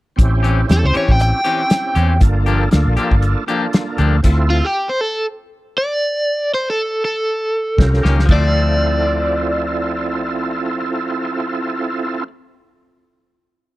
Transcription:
0.16 A1 C4 C#4 E4 G4, kick, closed hi-hat
0.43 E3 C4 C#4 G4, closed hi-hat
0.67 E2 C4 C#4 E4 G4, snare, closed hi-hat
0.72 A4
0.84 C#2 C5
0.94 E3 C4 C#4 G4 C#5, closed hi-hat
1.09 A1 G5, kick
1.20 G5, closed hi-hat
1.44 E3 C4 C#4 E4 G4, closed hi-hat
1.70 snare, closed hi-hat
1.95 E2 E3 C4 C#4 G4, closed hi-hat
2.20 G1 A#3 D4 F4 A4, kick, closed hi-hat
2.46 F3 A#3 D4 G4, closed hi-hat
2.71 D2 A#3 D4 F4 A4, snare, closed hi-hat
2.86 A#1
2.97 F3 A#3 D4 G4, muted fingered electric bass stroke, closed hi-hat
3.11 G1, kick
3.22 closed hi-hat
3.46 F3 A#3 D4 F4 G4 A4, closed hi-hat
3.73 snare, closed hi-hat
3.98 D2 F3 A#3 D4 G4, closed hi-hat
4.23 D2 C4 E4 F4 A4, kick, closed hi-hat, crash
4.50 F4
4.65 G4
4.89 C5
5.01 A4
5.78 D5
6.54 C5
6.70 A4
7.05 A4
7.77 C2 C#4 F4 G4 A#4, kick, snare
7.94 snare
8.03 C#2 D#3 A#3 C#4 G4, snare
8.19 snare
8.26 D2 F3 C4 E4 F4 A4, kick, crash
8.30 A3 D5
8.35 C4

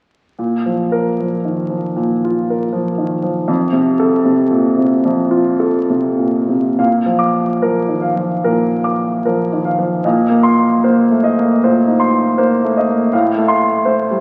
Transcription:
0.39 A#2
0.66 F3
0.92 A#4
1.20 F3
1.45 D#3
1.70 F3
1.96 A#2
2.24 F4
2.50 A#4
2.73 F3
2.98 D#3
3.23 F3
3.48 F2
3.72 C3
4.00 A4
4.25 C3
4.51 A#2
4.77 C3
5.05 F2
5.31 F4
5.60 A4
5.90 C3
6.18 A#2
6.49 C3
6.79 A#2 F5
7.06 F3
7.19 D6
7.62 F3 A#4
7.89 D#3
8.02 F5
8.15 F3
8.44 A#2 A#4
8.84 D6
9.25 F3 A#4
9.53 D#3
9.65 F5
9.79 F3
10.05 A#2 D#5
10.30 A#3
10.43 C6
10.84 A#3 C5
11.11 A3
11.24 D#5
11.38 A#3
11.64 A#2 C5
11.87 D#4
12.00 C6
12.38 A#3 C5
12.64 A3
12.77 D#5
12.88 A#3
13.13 A2 F5
13.37 A3
13.48 C6
13.85 A3 C5
14.11 G3

